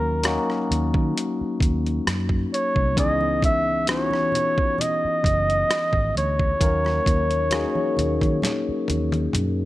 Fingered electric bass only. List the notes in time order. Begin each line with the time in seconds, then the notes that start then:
Already playing: D#2
0.71 D#2
0.95 D#3
1.41 muted fingered electric bass stroke
1.61 D#2
2.07 F#2
2.76 C2
2.98 C#2
5.05 muted fingered electric bass stroke
5.25 F#1
5.93 G#1
6.16 D2
6.61 D#2
7.07 D#2
7.98 D#2
8.22 D#3
8.69 muted fingered electric bass stroke
8.89 D#2
9.35 F#2